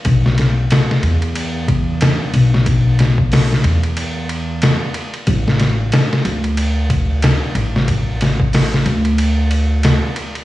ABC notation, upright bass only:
X:1
M:4/4
L:1/8
Q:"Swing 16ths" 1/4=92
K:Bm
V:1 name="Upright bass" clef=bass
B,,,2 z E,,3 z B,,,- | B,,,3 E,,3 z2 | A,,,2 z D,,3 z A,,,- | A,,,3 D,,3 z2 |]